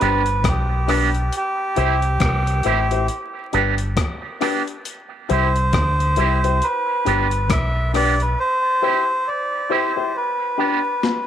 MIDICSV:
0, 0, Header, 1, 6, 480
1, 0, Start_track
1, 0, Key_signature, 0, "major"
1, 0, Tempo, 881446
1, 722, Time_signature, 4, 2, 24, 8
1, 6137, End_track
2, 0, Start_track
2, 0, Title_t, "Melodica"
2, 0, Program_c, 0, 22
2, 0, Note_on_c, 0, 71, 104
2, 264, Note_off_c, 0, 71, 0
2, 265, Note_on_c, 0, 67, 86
2, 735, Note_off_c, 0, 67, 0
2, 743, Note_on_c, 0, 67, 99
2, 1671, Note_off_c, 0, 67, 0
2, 2897, Note_on_c, 0, 72, 99
2, 3613, Note_on_c, 0, 71, 98
2, 3631, Note_off_c, 0, 72, 0
2, 4097, Note_on_c, 0, 76, 101
2, 4102, Note_off_c, 0, 71, 0
2, 4313, Note_off_c, 0, 76, 0
2, 4332, Note_on_c, 0, 74, 101
2, 4475, Note_off_c, 0, 74, 0
2, 4475, Note_on_c, 0, 71, 84
2, 4569, Note_off_c, 0, 71, 0
2, 4571, Note_on_c, 0, 72, 106
2, 5052, Note_on_c, 0, 74, 86
2, 5061, Note_off_c, 0, 72, 0
2, 5294, Note_off_c, 0, 74, 0
2, 5295, Note_on_c, 0, 72, 81
2, 5536, Note_off_c, 0, 72, 0
2, 5537, Note_on_c, 0, 71, 90
2, 6137, Note_off_c, 0, 71, 0
2, 6137, End_track
3, 0, Start_track
3, 0, Title_t, "Upright piano"
3, 0, Program_c, 1, 0
3, 1, Note_on_c, 1, 62, 72
3, 4, Note_on_c, 1, 67, 64
3, 7, Note_on_c, 1, 71, 74
3, 110, Note_off_c, 1, 62, 0
3, 112, Note_off_c, 1, 67, 0
3, 114, Note_off_c, 1, 71, 0
3, 478, Note_on_c, 1, 62, 85
3, 481, Note_on_c, 1, 67, 70
3, 485, Note_on_c, 1, 71, 91
3, 589, Note_off_c, 1, 62, 0
3, 591, Note_off_c, 1, 67, 0
3, 593, Note_off_c, 1, 71, 0
3, 958, Note_on_c, 1, 64, 89
3, 961, Note_on_c, 1, 67, 85
3, 965, Note_on_c, 1, 72, 102
3, 1069, Note_off_c, 1, 64, 0
3, 1071, Note_off_c, 1, 67, 0
3, 1073, Note_off_c, 1, 72, 0
3, 1441, Note_on_c, 1, 64, 84
3, 1443, Note_on_c, 1, 67, 78
3, 1447, Note_on_c, 1, 72, 93
3, 1551, Note_off_c, 1, 64, 0
3, 1552, Note_off_c, 1, 67, 0
3, 1554, Note_off_c, 1, 72, 0
3, 1585, Note_on_c, 1, 64, 74
3, 1587, Note_on_c, 1, 67, 66
3, 1591, Note_on_c, 1, 72, 76
3, 1658, Note_off_c, 1, 64, 0
3, 1659, Note_off_c, 1, 67, 0
3, 1662, Note_off_c, 1, 72, 0
3, 1920, Note_on_c, 1, 62, 70
3, 1923, Note_on_c, 1, 67, 69
3, 1927, Note_on_c, 1, 71, 77
3, 2030, Note_off_c, 1, 62, 0
3, 2032, Note_off_c, 1, 67, 0
3, 2034, Note_off_c, 1, 71, 0
3, 2399, Note_on_c, 1, 62, 86
3, 2403, Note_on_c, 1, 67, 74
3, 2405, Note_on_c, 1, 71, 83
3, 2510, Note_off_c, 1, 62, 0
3, 2512, Note_off_c, 1, 67, 0
3, 2513, Note_off_c, 1, 71, 0
3, 2879, Note_on_c, 1, 64, 94
3, 2881, Note_on_c, 1, 67, 81
3, 2884, Note_on_c, 1, 72, 95
3, 2990, Note_off_c, 1, 64, 0
3, 2991, Note_off_c, 1, 67, 0
3, 2993, Note_off_c, 1, 72, 0
3, 3357, Note_on_c, 1, 64, 87
3, 3361, Note_on_c, 1, 67, 83
3, 3364, Note_on_c, 1, 72, 96
3, 3469, Note_off_c, 1, 64, 0
3, 3471, Note_off_c, 1, 67, 0
3, 3472, Note_off_c, 1, 72, 0
3, 3503, Note_on_c, 1, 64, 67
3, 3507, Note_on_c, 1, 67, 67
3, 3510, Note_on_c, 1, 72, 81
3, 3578, Note_off_c, 1, 64, 0
3, 3580, Note_off_c, 1, 67, 0
3, 3581, Note_off_c, 1, 72, 0
3, 3839, Note_on_c, 1, 62, 75
3, 3841, Note_on_c, 1, 67, 65
3, 3845, Note_on_c, 1, 71, 84
3, 3950, Note_off_c, 1, 62, 0
3, 3951, Note_off_c, 1, 67, 0
3, 3953, Note_off_c, 1, 71, 0
3, 4321, Note_on_c, 1, 62, 75
3, 4324, Note_on_c, 1, 67, 83
3, 4328, Note_on_c, 1, 71, 91
3, 4431, Note_off_c, 1, 62, 0
3, 4432, Note_off_c, 1, 67, 0
3, 4434, Note_off_c, 1, 71, 0
3, 4802, Note_on_c, 1, 64, 84
3, 4805, Note_on_c, 1, 67, 83
3, 4808, Note_on_c, 1, 72, 99
3, 4911, Note_off_c, 1, 64, 0
3, 4913, Note_off_c, 1, 67, 0
3, 4914, Note_off_c, 1, 72, 0
3, 5279, Note_on_c, 1, 64, 85
3, 5283, Note_on_c, 1, 67, 83
3, 5286, Note_on_c, 1, 72, 89
3, 5390, Note_off_c, 1, 64, 0
3, 5392, Note_off_c, 1, 67, 0
3, 5393, Note_off_c, 1, 72, 0
3, 5423, Note_on_c, 1, 64, 76
3, 5427, Note_on_c, 1, 67, 67
3, 5429, Note_on_c, 1, 72, 76
3, 5498, Note_off_c, 1, 64, 0
3, 5499, Note_off_c, 1, 67, 0
3, 5501, Note_off_c, 1, 72, 0
3, 5759, Note_on_c, 1, 62, 81
3, 5762, Note_on_c, 1, 67, 64
3, 5765, Note_on_c, 1, 71, 73
3, 5870, Note_off_c, 1, 62, 0
3, 5872, Note_off_c, 1, 67, 0
3, 5873, Note_off_c, 1, 71, 0
3, 6137, End_track
4, 0, Start_track
4, 0, Title_t, "Clean electric guitar"
4, 0, Program_c, 2, 27
4, 2, Note_on_c, 2, 59, 78
4, 5, Note_on_c, 2, 62, 77
4, 7, Note_on_c, 2, 67, 78
4, 113, Note_off_c, 2, 59, 0
4, 115, Note_off_c, 2, 62, 0
4, 116, Note_off_c, 2, 67, 0
4, 480, Note_on_c, 2, 59, 80
4, 484, Note_on_c, 2, 62, 85
4, 487, Note_on_c, 2, 67, 90
4, 592, Note_off_c, 2, 59, 0
4, 594, Note_off_c, 2, 62, 0
4, 595, Note_off_c, 2, 67, 0
4, 961, Note_on_c, 2, 60, 82
4, 964, Note_on_c, 2, 64, 81
4, 966, Note_on_c, 2, 67, 87
4, 1073, Note_off_c, 2, 60, 0
4, 1074, Note_off_c, 2, 64, 0
4, 1075, Note_off_c, 2, 67, 0
4, 1443, Note_on_c, 2, 60, 89
4, 1445, Note_on_c, 2, 64, 83
4, 1448, Note_on_c, 2, 67, 91
4, 1554, Note_off_c, 2, 60, 0
4, 1554, Note_off_c, 2, 64, 0
4, 1556, Note_off_c, 2, 67, 0
4, 1921, Note_on_c, 2, 59, 73
4, 1924, Note_on_c, 2, 62, 85
4, 1929, Note_on_c, 2, 67, 95
4, 2033, Note_off_c, 2, 59, 0
4, 2034, Note_off_c, 2, 62, 0
4, 2036, Note_off_c, 2, 67, 0
4, 2401, Note_on_c, 2, 59, 68
4, 2406, Note_on_c, 2, 62, 79
4, 2406, Note_on_c, 2, 67, 84
4, 2512, Note_off_c, 2, 59, 0
4, 2515, Note_off_c, 2, 62, 0
4, 2515, Note_off_c, 2, 67, 0
4, 2885, Note_on_c, 2, 60, 77
4, 2889, Note_on_c, 2, 64, 75
4, 2892, Note_on_c, 2, 67, 85
4, 2995, Note_off_c, 2, 60, 0
4, 2997, Note_off_c, 2, 64, 0
4, 2998, Note_off_c, 2, 67, 0
4, 3364, Note_on_c, 2, 60, 83
4, 3367, Note_on_c, 2, 64, 74
4, 3368, Note_on_c, 2, 67, 85
4, 3474, Note_off_c, 2, 60, 0
4, 3476, Note_off_c, 2, 64, 0
4, 3476, Note_off_c, 2, 67, 0
4, 3844, Note_on_c, 2, 59, 71
4, 3847, Note_on_c, 2, 62, 85
4, 3849, Note_on_c, 2, 67, 89
4, 3954, Note_off_c, 2, 59, 0
4, 3956, Note_off_c, 2, 62, 0
4, 3957, Note_off_c, 2, 67, 0
4, 4325, Note_on_c, 2, 59, 73
4, 4328, Note_on_c, 2, 62, 76
4, 4330, Note_on_c, 2, 67, 84
4, 4435, Note_off_c, 2, 59, 0
4, 4436, Note_off_c, 2, 62, 0
4, 4437, Note_off_c, 2, 67, 0
4, 4805, Note_on_c, 2, 60, 78
4, 4808, Note_on_c, 2, 64, 77
4, 4810, Note_on_c, 2, 67, 78
4, 4915, Note_off_c, 2, 60, 0
4, 4916, Note_off_c, 2, 64, 0
4, 4917, Note_off_c, 2, 67, 0
4, 5283, Note_on_c, 2, 60, 82
4, 5288, Note_on_c, 2, 64, 85
4, 5290, Note_on_c, 2, 67, 80
4, 5394, Note_off_c, 2, 60, 0
4, 5396, Note_off_c, 2, 64, 0
4, 5397, Note_off_c, 2, 67, 0
4, 5764, Note_on_c, 2, 59, 66
4, 5767, Note_on_c, 2, 62, 77
4, 5768, Note_on_c, 2, 67, 84
4, 5874, Note_off_c, 2, 59, 0
4, 5876, Note_off_c, 2, 62, 0
4, 5877, Note_off_c, 2, 67, 0
4, 6137, End_track
5, 0, Start_track
5, 0, Title_t, "Fingered electric bass"
5, 0, Program_c, 3, 33
5, 9, Note_on_c, 3, 31, 95
5, 243, Note_off_c, 3, 31, 0
5, 243, Note_on_c, 3, 35, 85
5, 701, Note_off_c, 3, 35, 0
5, 966, Note_on_c, 3, 36, 88
5, 1193, Note_off_c, 3, 36, 0
5, 1204, Note_on_c, 3, 36, 87
5, 1433, Note_off_c, 3, 36, 0
5, 1445, Note_on_c, 3, 33, 78
5, 1673, Note_off_c, 3, 33, 0
5, 1927, Note_on_c, 3, 31, 86
5, 2154, Note_off_c, 3, 31, 0
5, 2888, Note_on_c, 3, 36, 98
5, 3114, Note_off_c, 3, 36, 0
5, 3126, Note_on_c, 3, 38, 88
5, 3353, Note_off_c, 3, 38, 0
5, 3367, Note_on_c, 3, 36, 87
5, 3594, Note_off_c, 3, 36, 0
5, 3847, Note_on_c, 3, 31, 94
5, 4086, Note_off_c, 3, 31, 0
5, 4086, Note_on_c, 3, 35, 81
5, 4543, Note_off_c, 3, 35, 0
5, 6137, End_track
6, 0, Start_track
6, 0, Title_t, "Drums"
6, 6, Note_on_c, 9, 42, 63
6, 60, Note_off_c, 9, 42, 0
6, 140, Note_on_c, 9, 42, 61
6, 195, Note_off_c, 9, 42, 0
6, 240, Note_on_c, 9, 36, 112
6, 241, Note_on_c, 9, 42, 95
6, 245, Note_on_c, 9, 37, 120
6, 295, Note_off_c, 9, 36, 0
6, 296, Note_off_c, 9, 42, 0
6, 299, Note_off_c, 9, 37, 0
6, 482, Note_on_c, 9, 46, 63
6, 486, Note_on_c, 9, 37, 58
6, 537, Note_off_c, 9, 46, 0
6, 541, Note_off_c, 9, 37, 0
6, 624, Note_on_c, 9, 42, 50
6, 678, Note_off_c, 9, 42, 0
6, 721, Note_on_c, 9, 42, 87
6, 776, Note_off_c, 9, 42, 0
6, 960, Note_on_c, 9, 42, 77
6, 1015, Note_off_c, 9, 42, 0
6, 1101, Note_on_c, 9, 42, 52
6, 1156, Note_off_c, 9, 42, 0
6, 1198, Note_on_c, 9, 42, 83
6, 1201, Note_on_c, 9, 36, 108
6, 1207, Note_on_c, 9, 37, 104
6, 1253, Note_off_c, 9, 42, 0
6, 1255, Note_off_c, 9, 36, 0
6, 1261, Note_off_c, 9, 37, 0
6, 1346, Note_on_c, 9, 42, 53
6, 1401, Note_off_c, 9, 42, 0
6, 1434, Note_on_c, 9, 42, 80
6, 1488, Note_off_c, 9, 42, 0
6, 1584, Note_on_c, 9, 42, 52
6, 1639, Note_off_c, 9, 42, 0
6, 1679, Note_on_c, 9, 42, 78
6, 1733, Note_off_c, 9, 42, 0
6, 1922, Note_on_c, 9, 42, 60
6, 1976, Note_off_c, 9, 42, 0
6, 2058, Note_on_c, 9, 42, 63
6, 2113, Note_off_c, 9, 42, 0
6, 2160, Note_on_c, 9, 36, 107
6, 2160, Note_on_c, 9, 42, 92
6, 2164, Note_on_c, 9, 37, 122
6, 2215, Note_off_c, 9, 36, 0
6, 2215, Note_off_c, 9, 42, 0
6, 2218, Note_off_c, 9, 37, 0
6, 2403, Note_on_c, 9, 46, 63
6, 2407, Note_on_c, 9, 37, 63
6, 2457, Note_off_c, 9, 46, 0
6, 2462, Note_off_c, 9, 37, 0
6, 2546, Note_on_c, 9, 42, 53
6, 2600, Note_off_c, 9, 42, 0
6, 2643, Note_on_c, 9, 42, 92
6, 2697, Note_off_c, 9, 42, 0
6, 2884, Note_on_c, 9, 42, 71
6, 2938, Note_off_c, 9, 42, 0
6, 3026, Note_on_c, 9, 42, 55
6, 3080, Note_off_c, 9, 42, 0
6, 3120, Note_on_c, 9, 42, 79
6, 3122, Note_on_c, 9, 36, 121
6, 3128, Note_on_c, 9, 37, 115
6, 3174, Note_off_c, 9, 42, 0
6, 3177, Note_off_c, 9, 36, 0
6, 3182, Note_off_c, 9, 37, 0
6, 3269, Note_on_c, 9, 42, 51
6, 3323, Note_off_c, 9, 42, 0
6, 3356, Note_on_c, 9, 42, 78
6, 3410, Note_off_c, 9, 42, 0
6, 3508, Note_on_c, 9, 42, 51
6, 3562, Note_off_c, 9, 42, 0
6, 3604, Note_on_c, 9, 42, 72
6, 3658, Note_off_c, 9, 42, 0
6, 3846, Note_on_c, 9, 42, 62
6, 3901, Note_off_c, 9, 42, 0
6, 3982, Note_on_c, 9, 42, 65
6, 4036, Note_off_c, 9, 42, 0
6, 4082, Note_on_c, 9, 36, 115
6, 4083, Note_on_c, 9, 42, 101
6, 4086, Note_on_c, 9, 37, 118
6, 4137, Note_off_c, 9, 36, 0
6, 4137, Note_off_c, 9, 42, 0
6, 4141, Note_off_c, 9, 37, 0
6, 4326, Note_on_c, 9, 46, 65
6, 4330, Note_on_c, 9, 37, 62
6, 4380, Note_off_c, 9, 46, 0
6, 4385, Note_off_c, 9, 37, 0
6, 4466, Note_on_c, 9, 42, 50
6, 4520, Note_off_c, 9, 42, 0
6, 6009, Note_on_c, 9, 38, 57
6, 6063, Note_off_c, 9, 38, 0
6, 6137, End_track
0, 0, End_of_file